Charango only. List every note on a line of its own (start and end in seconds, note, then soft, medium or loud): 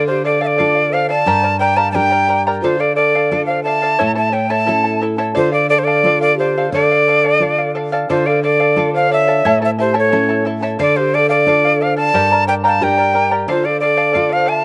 0.08 0.24 D5 soft
0.08 0.24 F5 medium
0.24 0.41 A4 medium
0.24 0.40 D5 medium
0.24 0.40 F5 medium
0.41 0.56 A4 soft
0.41 0.57 D5 medium
0.41 0.57 F5 medium
0.58 0.75 A4 soft
0.58 0.75 D5 medium
0.58 0.74 F5 medium
0.75 0.93 D5 soft
0.75 0.92 F5 soft
0.93 1.09 A4 medium
0.93 1.09 D5 medium
0.93 1.08 F5 medium
1.09 1.27 A4 soft
1.09 1.27 D5 medium
1.09 1.26 F5 medium
1.27 1.44 G4 medium
1.27 1.43 A#4 medium
1.27 1.43 D5 medium
1.27 1.44 G5 medium
1.27 1.42 A#5 medium
1.43 1.59 A#4 soft
1.43 1.60 D5 soft
1.43 1.60 A#5 medium
1.59 1.75 A#4 medium
1.59 1.75 D5 medium
1.59 1.76 G5 medium
1.59 1.76 A#5 medium
1.77 1.95 G4 soft
1.77 1.94 A#4 medium
1.77 1.93 D5 medium
1.77 1.93 G5 soft
1.77 1.94 A#5 medium
1.94 2.11 A#4 soft
1.94 2.11 D5 soft
1.94 2.12 G5 soft
1.94 2.10 A#5 medium
2.11 2.28 A#4 soft
2.11 2.28 D5 soft
2.11 2.28 A#5 soft
2.28 2.46 A#4 soft
2.28 2.46 D5 soft
2.28 2.46 G5 soft
2.28 2.46 A#5 medium
2.47 2.64 G4 soft
2.47 2.63 A#4 medium
2.47 2.63 D5 medium
2.47 2.64 G5 medium
2.47 2.64 A#5 medium
2.64 2.81 A4 medium
2.64 2.80 D5 medium
2.64 2.79 F5 medium
2.80 2.96 D5 soft
2.80 2.97 F5 medium
2.96 3.14 A4 soft
2.96 3.14 D5 soft
2.96 3.14 F5 medium
3.15 3.30 A4 medium
3.15 3.31 D5 medium
3.15 3.31 F5 medium
3.32 3.49 A4 soft
3.32 3.49 D5 medium
3.32 3.47 F5 medium
3.48 3.65 D5 soft
3.48 3.66 F5 soft
3.65 3.82 A4 medium
3.65 3.82 D5 soft
3.65 3.81 F5 medium
3.82 3.99 A4 soft
3.82 4.00 D5 medium
3.82 3.99 F5 medium
3.99 4.16 E4 medium
3.99 4.15 A4 medium
3.99 4.16 C#5 medium
3.99 4.17 E5 medium
3.99 4.14 A5 medium
4.15 4.32 E4 soft
4.15 4.33 A4 soft
4.15 4.32 A5 medium
4.32 4.50 E4 medium
4.32 4.49 A4 medium
4.32 4.49 E5 soft
4.32 4.49 A5 medium
4.50 4.65 E4 medium
4.50 4.66 A4 medium
4.50 4.68 C#5 soft
4.50 4.66 E5 soft
4.50 4.66 A5 medium
4.67 4.84 E4 medium
4.67 4.84 A4 medium
4.67 4.85 E5 soft
4.67 4.83 A5 medium
4.84 5.01 E4 soft
4.84 5.01 A4 soft
4.84 5.02 A5 soft
5.02 5.17 E4 medium
5.02 5.17 A4 soft
5.02 5.17 E5 medium
5.02 5.17 A5 medium
5.18 5.34 E4 medium
5.18 5.34 A4 medium
5.18 5.36 C#5 medium
5.18 5.35 E5 medium
5.18 5.36 A5 medium
5.35 5.53 A4 medium
5.35 5.51 D5 medium
5.35 5.50 F5 medium
5.52 5.69 D5 soft
5.52 5.70 F5 medium
5.70 5.86 A4 soft
5.70 5.86 D5 medium
5.70 5.86 F5 medium
5.87 6.04 A4 medium
5.87 6.04 D5 soft
5.87 6.04 F5 medium
6.05 6.22 A4 medium
6.05 6.22 D5 medium
6.05 6.20 F5 medium
6.21 6.39 D5 soft
6.21 6.38 F5 medium
6.39 6.56 A4 medium
6.39 6.56 D5 medium
6.39 6.56 F5 medium
6.58 6.73 A4 soft
6.58 6.73 D5 medium
6.58 6.74 F5 medium
6.74 6.91 A4 medium
6.74 6.91 D5 medium
6.74 6.90 F5 medium
6.91 7.07 D5 soft
6.91 7.07 F5 soft
7.08 7.24 A4 medium
7.08 7.23 D5 medium
7.08 7.23 F5 medium
7.24 7.39 A4 soft
7.24 7.41 D5 medium
7.24 7.41 F5 medium
7.41 7.58 A4 medium
7.41 7.58 D5 medium
7.41 7.57 F5 medium
7.58 7.74 D5 soft
7.58 7.75 F5 medium
7.75 7.92 A4 medium
7.75 7.92 D5 medium
7.75 7.91 F5 medium
7.92 8.08 A4 medium
7.92 8.09 D5 medium
7.92 8.09 F5 medium
8.10 8.26 A4 medium
8.10 8.26 D5 medium
8.10 8.26 F5 medium
8.27 8.42 D5 soft
8.27 8.43 F5 medium
8.43 8.59 A4 medium
8.43 8.59 D5 medium
8.43 8.59 F5 medium
8.60 8.75 A4 soft
8.60 8.77 D5 medium
8.60 8.77 F5 medium
8.76 8.93 A4 medium
8.76 8.94 D5 medium
8.76 8.93 F5 medium
8.95 9.10 D5 soft
8.95 9.11 F5 soft
9.11 9.28 A4 medium
9.11 9.27 D5 medium
9.11 9.27 F5 medium
9.28 9.45 A4 medium
9.28 9.44 D5 medium
9.28 9.44 F5 medium
9.45 9.62 E4 medium
9.45 9.61 A4 medium
9.45 9.61 C#5 medium
9.45 9.62 E5 medium
9.45 9.61 A5 medium
9.62 9.77 E4 soft
9.62 9.78 A4 soft
9.62 9.78 A5 medium
9.79 9.93 E4 medium
9.79 9.93 A4 medium
9.79 9.94 E5 medium
9.79 9.93 A5 medium
9.94 10.11 E4 medium
9.94 10.11 A4 medium
9.94 10.12 C#5 medium
9.94 10.11 E5 medium
9.94 10.11 A5 medium
10.12 10.29 E4 medium
10.12 10.29 A4 medium
10.12 10.29 E5 medium
10.12 10.28 A5 medium
10.29 10.45 E4 soft
10.29 10.46 A4 soft
10.29 10.45 A5 soft
10.45 10.62 E4 medium
10.45 10.61 A4 medium
10.45 10.62 E5 soft
10.45 10.61 A5 medium
10.62 10.79 E4 medium
10.62 10.78 A4 medium
10.62 10.80 C#5 medium
10.62 10.79 E5 medium
10.62 10.79 A5 medium
10.79 10.96 A4 medium
10.79 10.96 D5 medium
10.79 10.95 F5 medium
10.96 11.13 D5 soft
10.96 11.13 F5 medium
11.14 11.29 A4 soft
11.14 11.29 D5 medium
11.14 11.28 F5 medium
11.29 11.46 A4 soft
11.29 11.46 D5 medium
11.29 11.46 F5 medium
11.47 11.64 A4 medium
11.47 11.64 D5 medium
11.47 11.63 F5 medium
11.65 11.80 D5 soft
11.65 11.81 F5 medium
11.81 11.97 A4 soft
11.81 11.96 D5 medium
11.81 11.95 F5 medium
11.97 12.14 A4 soft
11.97 12.14 D5 medium
11.97 12.14 F5 medium
12.14 12.31 G4 medium
12.14 12.31 A#4 medium
12.14 12.31 D5 medium
12.14 12.31 G5 medium
12.14 12.31 A#5 medium
12.32 12.47 A#4 soft
12.32 12.47 D5 soft
12.32 12.47 A#5 soft
12.47 12.64 A#4 medium
12.47 12.63 D5 medium
12.47 12.64 G5 soft
12.47 12.63 A#5 medium
12.64 12.82 G4 medium
12.64 12.80 A#4 medium
12.64 12.81 D5 medium
12.64 12.80 G5 medium
12.64 12.81 A#5 medium
12.82 12.98 A#4 medium
12.82 12.97 D5 medium
12.82 12.98 G5 soft
12.82 12.96 A#5 medium
12.97 13.13 A#4 soft
12.97 13.14 D5 soft
12.97 13.14 A#5 soft
13.13 13.30 A#4 medium
13.13 13.30 D5 soft
13.13 13.31 G5 soft
13.13 13.30 A#5 medium
13.31 13.49 G4 soft
13.31 13.48 A#4 medium
13.31 13.47 D5 medium
13.31 13.48 G5 soft
13.31 13.48 A#5 medium
13.48 13.65 A4 medium
13.48 13.63 D5 medium
13.48 13.62 F5 medium
13.63 13.81 D5 soft
13.63 13.81 F5 soft
13.81 13.97 A4 soft
13.81 13.96 D5 soft
13.81 13.96 F5 medium
13.97 14.12 A4 soft
13.97 14.12 D5 medium
13.97 14.13 F5 medium
14.13 14.31 A4 medium
14.13 14.30 D5 soft
14.13 14.28 F5 medium
14.29 14.45 D5 soft
14.29 14.45 F5 soft
14.46 14.64 A4 medium
14.46 14.64 D5 medium
14.46 14.63 F5 medium